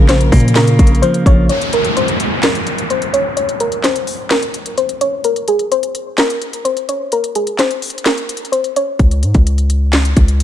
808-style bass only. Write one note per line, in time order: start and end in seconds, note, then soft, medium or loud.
0.00 0.31 A#1 loud
0.32 0.77 A#2 loud
0.79 1.02 A#1 loud
1.26 1.48 A#1 loud
8.99 9.24 C#2 loud
9.23 9.34 G#2 medium
9.35 10.13 C#2 loud
10.17 10.43 C#2 loud